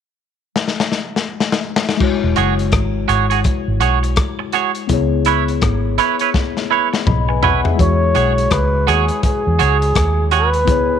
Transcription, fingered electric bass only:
2.24 2.37 E1 medium
2.38 2.73 F#1 medium
2.73 3.07 G#1 medium
3.09 3.44 G#1 medium
3.68 3.82 G#1 medium
3.82 4.16 B1 medium
4.90 5.59 C#2 loud
5.63 5.97 G#1 medium
7.07 7.63 B1 medium
7.80 8.14 E2 medium
8.16 8.50 B1 medium
8.52 8.86 C#2 medium
8.88 9.09 D#2 medium
9.47 9.60 E2 medium
9.61 9.95 C#2 medium
9.96 10.68 D#2 medium
10.68 10.99 C#2 loud

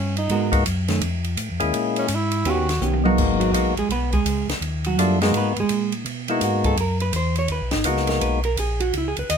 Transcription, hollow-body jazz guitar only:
0.30 0.51 G#3 medium
0.30 0.51 B3 medium
0.30 0.51 F#4 medium
0.30 0.51 A#4 medium
0.88 1.00 D#3 medium
0.88 1.01 A3 medium
0.88 1.01 C#4 medium
2.45 2.66 D#3 medium
2.45 2.66 B3 medium
2.45 2.66 C#4 medium
2.45 2.67 G4 medium
2.81 3.02 D#3 medium
2.81 3.02 B3 medium
2.81 3.03 C#4 medium
2.81 3.03 G4 medium
3.40 3.74 F#3 medium
3.40 3.74 F#4 medium
3.79 3.91 G#3 medium
3.79 3.91 G#4 medium
3.91 4.13 B3 medium
3.91 4.13 B4 medium
4.13 4.47 G#3 medium
4.13 4.47 G#4 medium
4.87 5.20 F#3 medium
4.87 5.19 F#4 medium
5.22 5.35 G#3 medium
5.22 5.35 G#4 medium
5.37 5.58 B3 medium
5.37 5.58 B4 medium
5.60 5.92 G#3 medium
5.60 5.92 G#4 medium
6.30 6.42 E4 medium
6.44 6.65 F#4 medium
6.66 6.78 A4 medium
6.81 7.01 A#4 medium
7.02 7.14 B4 medium
7.16 7.38 C5 medium
7.39 7.51 C#5 loud
7.52 7.73 B4 medium
7.73 7.88 D#4 medium
7.88 8.10 F#4 medium
8.09 8.22 A#4 medium
8.22 8.44 B4 medium
8.45 8.58 A#4 medium
8.60 8.81 G#4 medium
8.80 8.94 F#4 medium
8.98 9.08 E4 medium
9.08 9.19 G#4 medium
9.19 9.31 B4 medium
9.30 9.38 D#5 loud

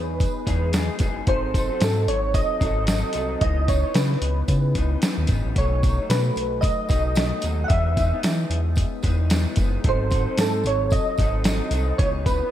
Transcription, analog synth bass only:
0.00 0.28 E2 medium
0.47 0.90 E2 loud
1.00 1.22 F#1 loud
1.27 1.70 G#1 loud
1.81 2.09 G#2 loud
2.07 2.42 G#1 medium
2.61 3.04 G#1 loud
3.15 3.36 C2 loud
3.41 3.84 C#2 loud
3.95 4.16 C#3 loud
4.21 4.43 C#2 medium
4.48 4.76 C#3 loud
4.75 4.97 C#2 loud
5.18 5.26 D#2 medium
5.29 5.42 G#1 medium
5.45 5.54 A1 medium
5.56 5.99 B1 loud
6.09 6.31 B2 loud
6.36 6.70 B1 medium
6.90 7.33 B1 loud
7.44 7.65 D#2 medium
7.70 8.13 E2 loud
8.24 8.45 E3 loud
8.50 8.84 E2 medium
9.03 9.46 E2 loud
9.57 9.79 F#1 loud
9.84 10.27 G#1 loud
10.37 10.65 G#2 loud
10.64 10.98 G#1 medium
11.19 11.61 G#1 loud
11.71 11.93 C2 loud
11.99 12.42 C#2 loud

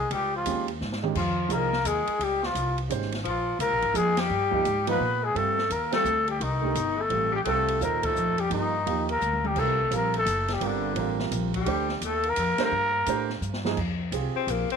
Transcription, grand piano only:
0.45 0.65 D#3 medium
0.45 0.66 G#3 soft
0.45 0.66 C#4 medium
0.45 0.66 G4 medium
1.02 1.14 D#3 medium
1.02 1.14 G#3 medium
1.02 1.15 C#4 medium
1.02 1.15 G4 medium
1.49 1.70 F3 medium
1.49 1.70 A#3 medium
1.49 1.70 D#4 medium
1.49 1.71 G#4 medium
2.89 3.10 G#3 medium
2.89 3.10 C#4 medium
2.89 3.11 G4 medium
2.89 3.11 C5 medium
3.94 4.15 F3 medium
3.94 4.15 A#3 medium
3.94 4.15 D#4 medium
3.94 4.16 G#4 medium
4.51 4.63 F3 medium
4.51 4.64 A#3 medium
4.51 4.64 D#4 medium
4.51 4.65 G4 medium
4.87 4.99 F3 medium
4.87 4.99 A#3 medium
4.87 5.00 D#4 medium
4.87 5.00 F4 medium
5.35 5.55 G3 medium
5.35 5.55 C4 medium
5.35 5.56 F4 medium
5.35 5.56 A4 medium
5.91 6.03 G3 medium
5.91 6.04 C4 medium
5.91 6.04 F4 medium
5.91 6.05 A4 medium
6.62 6.74 A3 medium
6.62 6.74 D4 medium
6.62 6.75 G4 medium
6.62 6.75 A#4 medium
7.09 7.30 G3 medium
7.09 7.31 C4 medium
7.09 7.31 F4 soft
7.09 7.31 A4 medium
7.45 7.80 G3 medium
7.45 7.80 C4 medium
7.45 7.80 F4 medium
7.45 7.81 A4 medium
7.81 8.34 A#2 medium
7.81 8.34 D#4 medium
7.81 8.35 A4 medium
7.81 8.35 C5 medium
8.50 8.71 F3 medium
8.50 8.71 A#3 medium
8.50 8.72 D#4 medium
8.50 8.72 G4 medium
8.86 9.07 F3 medium
8.86 9.07 A#3 medium
8.86 9.07 D#4 medium
8.86 9.08 G4 medium
9.55 9.76 G3 medium
9.55 9.77 C4 medium
9.55 9.77 F4 medium
9.55 9.77 A#4 medium
9.90 10.11 G3 medium
9.90 10.11 C4 medium
9.90 10.12 F4 medium
9.90 10.12 A#4 medium
10.61 10.94 G3 medium
10.61 10.95 C4 medium
10.61 10.95 F4 medium
10.61 10.96 A#4 medium
10.96 11.49 G3 medium
10.96 11.50 C4 medium
10.96 11.50 F4 medium
10.96 11.51 A#4 medium
11.66 11.87 A3 medium
11.66 11.87 D4 medium
11.66 11.87 G4 medium
11.66 11.88 C5 medium
12.59 12.71 A3 medium
12.59 12.71 D4 medium
12.59 12.71 G4 medium
12.59 12.71 C5 medium
13.07 13.28 A3 medium
13.07 13.28 D4 medium
13.07 13.28 G4 medium
13.07 13.29 C5 medium
13.64 13.76 F3 medium
13.64 13.77 A#3 medium
13.64 13.77 D#4 medium
13.64 13.77 G#4 medium
14.12 14.66 C4 medium
14.12 14.66 F4 medium
14.12 14.66 G4 medium
14.12 14.67 G#4 medium

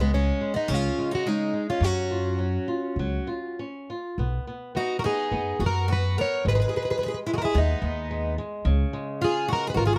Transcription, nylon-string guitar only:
0.00 0.12 C#3 medium
0.00 0.13 G#3 medium
0.13 0.40 C#3 soft
0.41 0.68 G#3 medium
0.70 1.25 C#3 medium
0.98 1.25 G#3 medium
1.26 1.52 C#3 medium
1.54 1.81 G#3 soft
1.82 2.37 F#3 medium
2.11 2.38 F4 soft
2.39 2.66 F#3 soft
2.68 2.96 F4 medium
2.99 3.28 F#3 medium
3.27 3.57 F4 soft
3.59 3.88 C#4 soft
3.90 4.18 F4 soft
4.19 4.46 B3 medium
4.47 4.74 B3 soft
4.75 5.03 B3 soft
5.05 5.31 B3 soft
5.32 5.59 B3 medium
5.60 5.88 B3 soft
5.89 6.17 B3 soft
6.18 6.45 B3 medium
6.46 6.72 G#3 medium
6.74 7.00 G#3 medium
7.01 7.25 G#3 medium
7.26 7.53 G#3 soft
7.54 7.81 G#3 medium
7.82 8.09 G#3 medium
8.11 8.37 G#3 medium
8.38 8.65 G#3 medium
8.65 9.98 C#3 medium
8.93 9.20 G#3 medium
9.21 9.48 F4 medium
9.48 9.75 G#3 medium
9.77 9.98 F4 medium

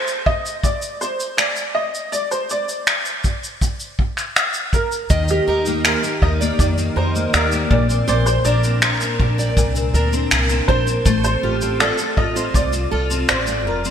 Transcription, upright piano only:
0.00 0.24 C5 medium
0.26 0.65 D#5 medium
0.64 1.02 D5 medium
1.01 1.36 C5 medium
1.37 1.76 D5 medium
1.75 2.13 D#5 medium
2.12 2.30 D5 medium
2.31 2.50 C5 medium
2.51 4.80 D5 medium
4.74 5.31 A#4 medium
5.31 5.82 G4 medium
5.86 6.20 A#4 medium
6.22 6.31 D#5 medium
6.60 6.68 D5 medium
6.97 7.31 C5 medium
7.34 7.72 A#4 medium
7.71 8.07 D5 medium
8.09 8.28 D5 medium
8.26 8.46 C5 medium
8.45 10.64 D5 medium
10.68 11.23 C5 medium
11.24 11.82 C5 medium
11.80 11.88 D5 medium
12.18 12.56 D#5 medium
12.55 13.31 D5 medium
13.29 13.37 C5 medium
13.66 13.91 A#4 medium

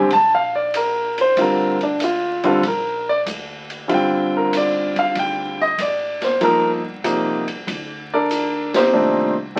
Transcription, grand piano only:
0.00 0.11 G#5 medium
0.13 0.32 A5 loud
0.35 0.53 F5 medium
0.55 0.74 D5 medium
0.76 1.17 A#4 medium
1.21 1.38 C5 medium
1.37 1.76 D3 medium
1.37 1.76 G3 soft
1.37 1.77 C4 soft
1.37 1.76 F4 medium
1.37 1.81 A#4 medium
1.83 2.01 D4 medium
2.04 2.44 F4 medium
2.44 2.61 D3 medium
2.44 2.61 G3 medium
2.44 2.62 C4 medium
2.44 2.62 F4 medium
2.44 2.64 A4 medium
2.68 3.07 A#4 medium
3.09 3.20 D5 medium
3.88 5.66 D3 medium
3.88 5.66 G3 medium
3.88 5.66 C4 medium
3.88 5.66 F4 medium
3.94 4.34 G5 medium
4.37 4.54 A#4 medium
4.57 4.97 D5 medium
4.99 5.16 F5 medium
5.19 5.59 G5 medium
5.61 5.79 D#5 medium
5.82 6.22 D5 medium
6.25 6.42 C5 medium
6.41 6.80 F3 medium
6.41 6.80 A#3 medium
6.41 6.81 D#4 medium
6.41 6.81 A4 medium
6.41 6.69 A#4 medium
7.04 7.43 C3 medium
7.04 7.43 F3 soft
7.04 7.43 A#3 medium
7.04 7.44 D#4 medium
8.14 8.71 D4 medium
8.14 8.71 A4 medium
8.14 8.71 A#4 medium
8.14 8.71 D5 medium
8.76 9.34 C4 medium
8.76 9.34 D#4 medium
8.76 9.34 G4 medium
8.76 9.34 C5 medium
8.93 9.32 A#2 medium
8.93 9.32 D#3 medium
8.93 9.33 A3 medium
8.93 9.32 D4 medium
9.56 9.60 D#3 medium
9.56 9.60 A3 soft
9.56 9.60 D4 soft

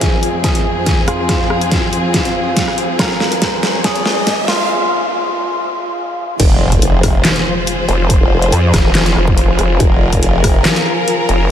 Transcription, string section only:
0.00 4.66 F2 medium
0.00 4.65 F3 medium
0.00 4.65 C4 medium
0.00 4.65 G#4 medium
6.40 11.51 F3 medium
6.40 11.51 F4 medium
6.40 11.51 G#4 medium
6.40 9.79 C5 medium
9.80 11.51 A#4 medium

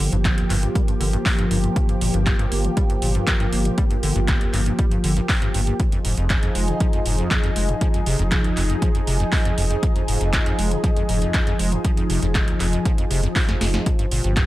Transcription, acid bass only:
0.00 0.10 D3 loud
0.13 0.17 G2 loud
0.25 0.39 G1 loud
0.38 0.45 G2 loud
0.50 0.57 G2 loud
0.63 0.70 G2 medium
0.75 0.82 G3 medium
0.88 0.95 G2 medium
1.00 1.11 D3 loud
1.13 1.17 G2 loud
1.26 1.30 G2 medium
1.39 1.45 G2 loud
1.51 1.58 G2 loud
1.64 1.71 G2 medium
1.76 1.80 G2 medium
1.89 1.96 G2 medium
2.01 2.12 A#2 medium
2.14 2.24 G2 medium
2.39 2.46 G2 loud
2.52 2.66 A#3 medium
2.65 2.71 D3 medium
2.77 2.84 G3 medium
2.90 2.97 G2 medium
3.02 3.13 A#2 medium
3.15 3.25 G2 medium
3.28 3.35 G2 medium
3.40 3.47 G2 loud
3.53 3.67 A#3 medium
3.65 3.72 G2 medium
3.78 3.85 G3 medium
3.91 3.97 G2 medium
4.03 4.14 D3 loud
4.16 4.20 G2 loud
4.28 4.43 G1 loud
4.41 4.48 G2 loud
4.53 4.60 G2 loud
4.66 4.73 G2 medium
4.79 4.86 G3 medium
4.92 4.98 G2 medium
5.04 5.15 D3 loud
5.17 5.21 G2 loud
5.29 5.33 G2 medium
5.42 5.49 G2 loud
5.54 5.61 G2 loud
5.67 5.74 G2 medium
5.80 5.84 F2 medium
5.93 5.99 F2 medium
6.05 6.15 G#2 medium
6.18 6.28 F2 medium
6.30 6.37 F2 medium
6.43 6.50 F2 loud
6.55 6.70 G#3 medium
6.68 6.75 C3 medium
6.81 6.88 F3 medium
6.93 7.00 F2 medium
7.06 7.16 G#2 medium
7.18 7.29 F2 medium
7.44 7.50 F2 loud
7.56 7.70 G#3 medium
7.69 7.76 F2 medium
7.81 7.88 F3 medium
7.94 8.01 F2 medium
8.07 8.17 C3 loud
8.19 8.23 F2 loud
8.32 8.46 F1 loud
8.44 8.51 F2 loud
8.57 8.64 F2 loud
8.70 8.77 F2 medium
8.82 8.89 F3 medium
8.95 9.02 F2 medium
9.07 9.18 C3 loud
9.20 9.24 F2 loud
9.32 9.37 F2 medium
9.45 9.52 F2 loud
9.58 9.65 F2 loud
9.70 9.77 F2 medium
9.83 9.87 F2 medium
9.96 10.03 F2 medium
10.08 10.19 G#2 medium
10.21 10.31 F2 medium
10.46 10.53 F2 loud
10.58 10.73 G#3 medium
10.71 10.78 C3 medium
10.84 10.91 F3 medium
10.96 11.03 F2 medium
11.09 11.20 G#2 medium
11.22 11.32 F2 medium
11.47 11.54 F2 loud
11.59 11.74 G#3 medium
11.72 11.79 F2 medium
11.85 11.92 F3 medium
11.97 12.04 F2 medium
12.10 12.20 C3 loud
12.22 12.27 F2 medium
12.35 12.49 F1 loud
12.48 12.55 F2 loud
12.60 12.67 F2 loud
12.73 12.80 F2 medium
12.85 12.92 F3 medium
12.98 13.05 F2 medium
13.11 13.21 C3 loud
13.23 13.28 F2 loud
13.36 13.40 F2 medium
13.49 13.56 F2 loud
13.61 13.68 F2 loud
13.74 13.81 F2 medium
13.86 13.91 G2 medium
13.99 14.06 G2 medium
14.12 14.22 A#2 medium
14.24 14.35 G2 medium
14.37 14.44 G2 medium

